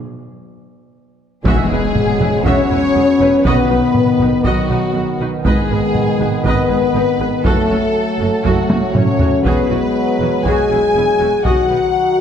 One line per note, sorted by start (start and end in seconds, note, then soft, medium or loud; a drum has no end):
0.00 0.16 B2 medium
1.45 1.53 E1 medium
1.45 1.53 E2 medium
1.45 2.16 E2 medium
1.45 3.41 F#3 medium
1.45 2.41 G#3 loud
1.45 5.41 B3 medium
1.45 1.69 F#4 medium
1.45 2.41 G#4 medium
1.45 1.69 E5 medium
1.45 taiko medium
1.45 impact medium
1.71 1.79 E1 medium
1.71 1.79 E2 medium
1.71 1.79 E4 medium
1.71 1.79 B4 soft
1.95 taiko low-mid medium
2.20 2.28 E1 medium
2.20 2.28 E2 medium
2.20 2.29 E4 medium
2.20 2.29 B4 medium
2.20 taiko low-mid soft
2.44 2.53 E1 medium
2.44 2.53 E2 medium
2.44 3.44 C#4 loud
2.44 2.69 F#4 medium
2.44 3.44 C#5 loud
2.44 3.43 C#5 loud
2.44 2.69 E5 medium
2.44 taiko medium
2.70 2.79 E1 medium
2.70 2.78 E2 medium
2.70 2.79 E4 medium
2.70 2.78 B4 soft
2.95 3.04 E1 medium
2.95 3.03 E2 medium
2.95 3.04 B3 medium
2.95 3.04 G#4 medium
3.20 3.29 E1 medium
3.20 3.28 E2 medium
3.20 3.28 E4 medium
3.20 3.29 B4 medium
3.44 3.53 B1 medium
3.44 4.16 B2 medium
3.44 3.53 B2 medium
3.44 7.44 D#3 medium
3.44 4.45 B3 medium
3.44 3.68 F#4 medium
3.44 4.45 B4 medium
3.44 4.43 B4 medium
3.44 3.68 D#5 medium
3.44 taiko medium
3.70 3.79 B1 medium
3.70 3.78 B2 medium
3.70 3.78 D#4 medium
3.70 3.78 B4 medium
3.95 taiko low-mid medium
4.20 4.28 B1 medium
4.20 4.28 B2 medium
4.20 4.29 D#4 medium
4.20 4.29 B4 soft
4.20 taiko low-mid soft
4.44 4.53 B1 medium
4.44 4.52 B2 medium
4.44 5.20 F#3 medium
4.44 5.18 F#4 medium
4.44 4.68 F#4 medium
4.44 5.19 F#4 medium
4.44 4.68 D#5 medium
4.44 taiko medium
4.69 4.77 B1 medium
4.69 4.78 B2 medium
4.69 4.78 D#4 medium
4.69 4.78 B4 medium
4.94 5.03 B1 medium
4.94 5.02 B2 medium
4.94 5.04 B3 soft
4.94 5.04 F#4 medium
5.20 5.28 B1 medium
5.20 5.28 B2 medium
5.20 5.29 D#4 medium
5.20 5.28 B4 medium
5.45 5.53 G#1 medium
5.45 5.53 G#2 medium
5.45 6.41 G#3 medium
5.45 7.41 B3 medium
5.45 6.41 G#4 medium
5.45 5.69 B4 medium
5.45 5.69 D#5 medium
5.45 taiko medium
5.70 5.78 G#1 medium
5.70 5.78 G#2 medium
5.70 5.79 G#4 soft
5.70 5.79 B4 soft
5.95 taiko low-mid medium
6.19 6.28 G#1 medium
6.19 6.27 G#2 medium
6.19 6.29 G#4 medium
6.19 6.28 B4 medium
6.19 taiko low-mid soft
6.44 6.53 G#1 medium
6.44 6.52 G#2 medium
6.44 7.46 B3 medium
6.44 7.45 B4 medium
6.44 6.68 B4 medium
6.44 7.45 B4 medium
6.44 6.69 D#5 medium
6.44 taiko medium
6.69 6.77 G#1 medium
6.69 6.77 G#2 medium
6.69 6.79 G#4 medium
6.69 6.78 B4 medium
6.94 7.02 G#1 medium
6.94 7.03 G#2 medium
6.94 7.03 D#4 medium
6.94 7.03 G#4 medium
7.19 7.27 G#1 medium
7.19 7.27 G#2 medium
7.19 7.28 G#4 medium
7.19 7.28 B4 medium
7.45 7.53 F#1 medium
7.45 7.53 F#2 medium
7.45 11.29 F#3 medium
7.45 8.43 A3 medium
7.45 9.42 A3 medium
7.45 7.68 F#4 medium
7.45 8.43 A4 medium
7.45 7.68 A4 medium
7.45 8.43 A4 medium
7.45 taiko medium
7.70 7.78 F#1 medium
7.70 7.78 F#2 medium
7.70 7.78 C#4 soft
7.70 7.78 F#4 soft
8.20 8.28 F#1 medium
8.20 8.28 F#2 medium
8.20 8.28 C#4 soft
8.20 8.28 F#4 soft
8.45 8.54 F#1 medium
8.45 8.53 F#2 medium
8.45 8.94 F#3 medium
8.45 8.95 F#4 medium
8.45 8.68 F#4 medium
8.45 8.95 F#4 medium
8.45 8.68 A4 medium
8.45 taiko medium
8.70 8.78 F#1 medium
8.70 8.78 F#2 medium
8.70 8.78 C#4 medium
8.70 8.78 F#4 medium
8.70 taiko high medium
8.94 9.02 F#1 medium
8.94 9.03 F#2 medium
8.94 9.04 A3 medium
8.94 9.03 C#4 soft
8.94 9.45 C#4 medium
8.94 9.45 C#5 medium
8.94 taiko low-mid medium
9.19 9.28 F#1 medium
9.19 9.27 F#2 medium
9.19 9.28 C#4 medium
9.19 9.28 F#4 medium
9.19 taiko low medium
9.44 9.52 E1 medium
9.44 9.52 E2 medium
9.44 11.29 G#3 medium
9.44 10.45 B3 medium
9.44 9.68 F#4 medium
9.44 9.68 G#4 medium
9.44 10.43 B4 medium
9.44 taiko medium
9.70 9.78 E1 medium
9.70 9.78 E2 medium
9.70 9.78 E4 medium
9.70 9.78 F#4 soft
10.20 10.28 E1 medium
10.20 10.28 E2 medium
10.20 10.29 E4 medium
10.20 10.29 F#4 soft
10.45 10.53 E1 medium
10.45 10.53 E2 medium
10.45 10.69 F#4 medium
10.45 11.45 G#4 medium
10.45 10.69 G#4 medium
10.45 11.45 G#5 medium
10.45 taiko medium
10.70 10.79 E1 soft
10.70 10.78 E2 soft
10.70 10.79 E4 medium
10.70 10.79 F#4 soft
10.95 11.04 E1 soft
10.95 11.03 E2 soft
10.95 11.04 B3 soft
10.95 11.03 E4 medium
11.20 11.29 E1 soft
11.20 11.28 E2 soft
11.20 11.28 E4 soft
11.20 11.28 F#4 medium
11.44 11.54 B1 medium
11.44 11.52 B2 medium
11.44 12.21 D#3 medium
11.44 12.21 F#3 medium
11.44 11.68 F#4 medium
11.44 12.21 F#4 medium
11.44 11.68 D#5 medium
11.44 12.21 F#5 medium
11.44 taiko medium
11.70 11.78 B1 soft
11.70 11.78 B2 soft
11.70 11.78 D#4 soft
11.70 11.78 B4 soft